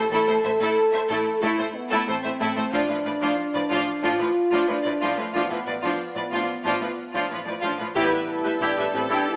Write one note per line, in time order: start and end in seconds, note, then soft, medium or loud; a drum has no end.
0.00 0.10 A4 medium
0.11 0.18 A1 medium
0.11 0.18 A2 medium
0.11 0.27 A3 medium
0.11 0.27 E4 soft
0.11 0.26 A4 medium
0.11 1.40 A4 medium
0.26 0.34 A2 soft
0.26 0.35 A3 soft
0.26 0.35 A4 soft
0.26 0.33 C5 soft
0.44 0.50 A1 soft
0.44 0.51 A2 soft
0.44 0.51 A3 soft
0.44 0.51 C5 soft
0.44 0.50 E5 soft
0.60 0.67 A2 soft
0.60 0.75 A3 soft
0.60 0.76 E4 medium
0.60 0.75 A4 medium
0.93 0.99 A2 soft
0.93 1.00 A3 soft
0.93 1.01 C5 soft
0.93 1.00 E5 soft
1.08 1.16 A1 medium
1.08 1.16 A2 medium
1.08 1.25 A3 medium
1.08 1.26 E4 soft
1.08 1.24 A4 medium
1.41 1.48 A1 soft
1.41 1.49 A2 medium
1.41 1.57 A3 medium
1.41 1.75 E4 medium
1.41 1.59 E4 soft
1.41 1.57 A4 medium
1.58 1.65 A2 soft
1.58 1.65 A3 soft
1.58 1.66 A4 soft
1.58 1.65 C5 soft
1.75 2.08 B3 medium
1.90 1.98 A2 medium
1.90 2.06 A3 medium
1.90 2.07 E4 medium
1.90 2.06 A4 medium
2.07 2.14 A1 soft
2.07 2.14 A2 soft
2.07 2.14 A3 soft
2.07 2.74 C4 medium
2.07 2.15 A4 soft
2.07 2.15 C5 soft
2.24 2.31 A2 soft
2.24 2.30 A3 soft
2.24 2.31 C5 soft
2.24 2.30 E5 soft
2.40 2.47 A1 soft
2.40 2.47 A2 medium
2.40 2.54 A3 soft
2.40 2.56 E4 medium
2.40 2.56 A4 soft
2.56 2.63 A2 soft
2.56 2.62 A3 soft
2.56 2.63 A4 soft
2.56 2.63 C5 soft
2.72 2.80 A1 soft
2.72 2.80 A2 soft
2.72 2.88 F3 soft
2.72 2.88 D4 medium
2.72 3.38 D4 medium
2.72 2.88 F4 soft
2.72 taiko soft
2.89 2.96 A2 soft
2.89 2.96 F3 soft
2.89 2.96 F4 soft
2.89 2.96 B4 soft
3.05 3.12 A1 soft
3.05 3.12 A2 soft
3.05 3.12 F3 soft
3.05 3.12 B4 soft
3.05 3.12 D5 soft
3.21 3.28 A2 soft
3.21 3.37 F3 soft
3.21 3.37 D4 medium
3.21 3.38 F4 soft
3.39 4.03 D4 medium
3.54 3.61 A2 soft
3.54 3.60 F3 soft
3.54 3.61 B4 soft
3.54 3.61 D5 soft
3.70 3.77 A1 soft
3.70 3.77 A2 soft
3.70 3.86 F3 soft
3.70 3.87 D4 soft
3.70 3.86 F4 medium
4.03 4.10 A1 soft
4.03 4.10 A2 soft
4.03 4.19 F3 soft
4.03 4.18 D4 soft
4.03 4.19 F4 soft
4.03 4.69 F4 medium
4.19 4.26 A2 soft
4.19 4.27 F3 soft
4.19 4.26 F4 soft
4.19 4.26 B4 soft
4.52 4.58 A2 soft
4.52 4.68 F3 soft
4.52 4.68 D4 soft
4.52 4.68 F4 soft
4.68 4.76 A1 soft
4.68 4.75 A2 soft
4.68 4.76 F3 soft
4.68 5.18 D4 medium
4.68 4.76 F4 soft
4.68 4.75 B4 soft
4.84 4.91 A2 soft
4.84 4.92 F3 soft
4.84 4.92 B4 soft
4.84 4.91 D5 soft
5.01 5.08 A1 soft
5.01 5.08 A2 soft
5.01 5.17 F3 soft
5.01 5.17 D4 soft
5.01 5.17 F4 soft
5.17 5.24 A2 soft
5.17 5.25 F3 soft
5.17 5.35 A3 soft
5.17 5.25 F4 soft
5.17 5.25 B4 soft
5.33 5.41 A1 soft
5.33 5.40 A2 soft
5.33 5.50 F3 soft
5.33 7.31 B3 soft
5.33 5.50 D4 soft
5.33 5.50 F4 soft
5.50 5.57 A2 soft
5.50 5.58 F3 soft
5.50 5.58 F4 soft
5.50 5.58 B4 soft
5.67 5.73 A1 soft
5.67 5.74 A2 soft
5.67 5.74 F3 soft
5.67 5.73 B4 soft
5.67 5.73 D5 soft
5.83 5.89 A2 soft
5.83 5.99 F3 soft
5.83 5.99 D4 soft
5.83 5.98 F4 soft
6.16 6.22 A2 soft
6.16 6.23 F3 soft
6.16 6.23 B4 soft
6.16 6.23 D5 soft
6.32 6.39 A1 soft
6.32 6.39 A2 soft
6.32 6.47 F3 soft
6.32 6.49 D4 soft
6.32 6.48 F4 soft
6.64 6.71 A1 soft
6.64 6.71 A2 soft
6.64 6.80 F3 soft
6.64 6.81 D4 soft
6.64 6.80 F4 soft
6.81 6.88 A2 soft
6.81 6.88 F3 soft
6.81 6.89 F4 soft
6.81 6.89 B4 soft
7.14 7.21 A2 soft
7.14 7.29 F3 soft
7.14 7.30 D4 soft
7.14 7.30 F4 soft
7.30 7.37 A1 soft
7.30 7.37 A2 soft
7.30 7.37 F3 soft
7.30 7.38 F4 soft
7.30 7.37 B4 soft
7.46 7.54 A2 soft
7.46 7.53 F3 soft
7.46 7.54 B4 soft
7.46 7.53 D5 soft
7.62 7.69 A1 soft
7.62 7.70 A2 soft
7.62 7.78 F3 soft
7.62 7.79 D4 soft
7.62 7.78 F4 soft
7.78 7.86 A2 soft
7.78 7.86 F3 soft
7.78 7.86 F4 soft
7.78 7.85 B4 soft
7.95 8.11 A1 medium
7.95 8.11 A2 medium
7.95 9.36 G3 medium
7.95 9.36 B3 medium
7.95 8.11 E4 medium
7.95 8.58 E4 medium
7.95 8.11 G4 medium
7.95 8.26 B4 medium
7.95 taiko medium
8.12 8.19 A2 soft
8.12 8.19 G4 soft
8.12 8.19 B4 soft
8.12 8.18 E5 soft
8.28 9.36 A4 soft
8.44 8.51 A2 soft
8.44 8.51 G4 soft
8.44 8.51 B4 soft
8.44 8.52 E5 soft
8.61 8.68 A1 soft
8.61 8.67 A2 soft
8.61 8.93 D4 medium
8.61 8.76 E4 soft
8.61 8.76 G4 soft
8.61 8.77 G4 soft
8.61 taiko medium
8.77 8.84 A2 soft
8.77 8.84 G4 soft
8.77 8.84 B4 soft
8.77 8.84 E5 soft
8.94 9.00 A1 soft
8.94 9.01 A2 soft
8.94 9.10 C4 medium
8.94 9.00 G4 soft
8.94 9.01 B4 soft
9.10 9.17 A2 medium
9.10 9.27 D4 medium
9.10 9.25 E4 soft
9.10 9.25 G4 soft
9.28 9.36 E4 medium